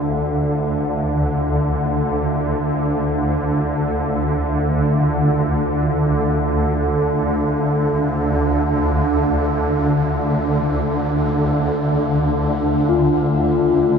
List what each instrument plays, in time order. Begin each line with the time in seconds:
Already playing: synth drone D2 D3, analog synth pad D4 A4 E5 F5
5.01 singing bowl D3
12.89 singing bowl F4